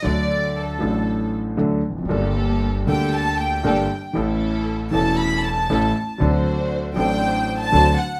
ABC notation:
X:1
M:4/4
L:1/16
Q:1/4=117
K:Dphr
V:1 name="Violin section"
d4 A6 z6 | z6 g2 a2 g6 | z6 a2 =b2 a6 | z6 g4- g a3 ^f2 |]
V:2 name="String section"
z16 | [B,GA]6 [B,GA]6 [B,GA]2 z2 | [^C=EA]6 [CEA]6 [CEA]2 z2 | [D^Fc]6 [^F,Dc]6 [DFc]2 z2 |]
V:3 name="Grand piano" clef=bass
[D,,D,^F,A,DA]6 [A,,,A,,F,A,DA]6 [D,,D,F,A,DA]2 z/2 =E,,/2 =F,,/2 ^F,,/2 | [G,,,G,,G,B,DA]6 [D,,D,G,B,DA]6 [G,,,G,,G,B,DA]2 z2 | [A,,,A,,=E,A,^CA]6 [=E,,,=E,,E,A,CA]6 [A,,,A,,E,A,CA]2 z2 | [D,,D,^F,CDA]6 [A,,,A,,F,CDA]6 [D,,D,F,CDA]2 z2 |]
V:4 name="Upright bass" clef=bass
D,,4- D,,3/2 z/2 A,,,4- A,,,3/2 z/2 D,,3/2 z =E,,,/2 F,,,/2 ^F,,,/2 | G,,,4- G,,,3/2 z/2 D,,4- D,,3/2 z/2 G,,,3/2 z2 z/2 | A,,,4- A,,,3/2 z/2 =E,,,4- E,,,3/2 z/2 A,,,3/2 z2 z/2 | D,,4- D,,3/2 z/2 A,,,4- A,,,3/2 z/2 D,,3/2 z2 z/2 |]